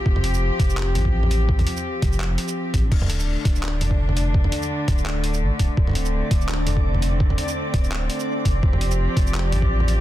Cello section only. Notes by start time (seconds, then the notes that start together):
Already playing: F3 C4 G4
2.92 D3 A3 D4
5.77 C4
8.63 F3 G4